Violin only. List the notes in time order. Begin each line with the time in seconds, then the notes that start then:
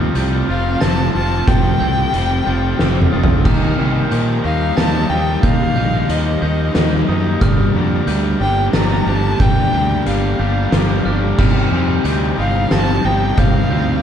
0.49 F5
0.81 A5
1.15 A5
1.48 G5
4.45 F5
4.77 A5
5.09 G5
5.44 F5
6.10 D#5
8.41 G5
8.75 A#5
9.09 A5
9.41 G5
10.08 F5
12.39 F5
12.72 A5
13.05 G5
13.38 F5